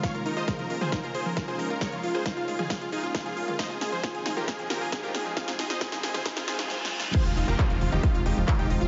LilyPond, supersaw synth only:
\new Staff \with { instrumentName = "Supersaw synth" } { \time 4/4 \key f \minor \tempo 4 = 135 <des'' f''>16 bes'16 bes'16 <c'' ees''>16 bes'16 bes'16 bes'16 <aes' c''>16 bes'16 bes'16 <aes' c''>16 bes'16 bes'16 <aes' c''>16 bes'16 bes'16 | <bes' des''>16 f'16 f'16 <aes' c''>16 f'16 f'16 f'16 <f' aes'>16 f'16 f'16 <f' aes'>16 f'16 f'16 <f' aes'>16 f'16 f'16 | <c'' ees''>16 aes'16 aes'16 <aes' c''>16 aes'16 aes'16 aes'16 <g' bes'>16 aes'16 aes'16 <g' bes'>16 aes'16 aes'16 <g' bes'>16 aes'16 aes'16 | <aes' f''>16 aes'16 aes'16 <c'' ees''>16 aes'16 aes'16 aes'16 <aes' c''>16 aes'16 aes'16 <aes' c''>16 aes'16 r4 |
<aes' c''>16 f'16 f'16 <g' bes'>16 f'16 f'16 f'16 <ees' g'>16 f'16 f'16 <ees' g'>16 f'16 f'16 <ees' g'>16 f'16 f'16 | }